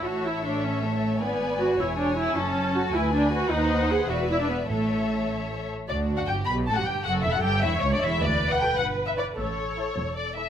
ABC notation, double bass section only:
X:1
M:6/8
L:1/16
Q:3/8=103
K:A
V:1 name="Double bass section" clef=bass
A,,,12 | G,,,6 E,,,6 | F,,,6 D,,6 | ^D,,6 E,,,6 |
A,,,8- A,,,2 z2 | [K:D] D,,3 z G,,,2 B,,,2 A,,, z G,,,2 | F,,,2 E,,, z G,,,2 E,,,2 C,, z E,,,2 | D,,6 G,,,6 |
A,,,6 E,,,6 |]